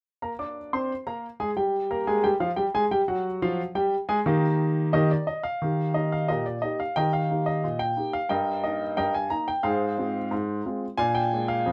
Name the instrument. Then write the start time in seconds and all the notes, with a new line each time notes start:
upright piano
0.22 A#3 A#4 A#5
0.39 D4 D5 D6
0.73 C4 C5 C6
1.07 A#3 A#4 A#5
1.40 G#3 G#4 G#5
1.56 G3 G4 G5
1.90 A#3 A#4 A#5
2.07 G#3 G#4 G#5
2.24 G3 G4 G5
2.40 F3 F4 F5
2.56 G3 G4 G5
2.74 G#3 G#4 G#5
2.91 G3 G4 G5
3.08 F#3 F#4 F#5
3.42 F3 F4 F5
3.75 G3 G4 G5
4.09 G#3 G#4 G#5
4.26 D#3 A#3 D#4 G4
4.93 D#3 A#3 D#4 G4 A#4 D#5
5.11 D5
5.27 D#5
5.43 F5
5.62 D#3 G4
5.94 A#3 D#4 G4 D#5
6.12 F5
6.28 A#2 G4 A#4 D#5
6.46 D5
6.62 A#3 D#4 G4 D#5
6.80 F5
6.96 D#3 G4 A#4 D#5 G5
7.13 F5
7.30 A#3 D#4 G4
7.46 D#5
7.64 A#2
7.79 G5
7.97 A#3 D#4 G4
8.13 F5
8.29 G2 A#4 D#5 G5
8.64 A#3 D#4 D#5
8.97 G2 A#4 D#5 G5
9.14 G#5
9.30 A#3 D#4 A#5
9.48 G5
9.63 G#2 G#4 C5 F5
9.98 G#3 C4 F4
10.31 G#2
10.66 G#3 C4 F4
10.98 A#2 D4 D5 F5 G#5
11.15 G5
11.33 G#3 A#3 D4
11.48 F5
11.66 F2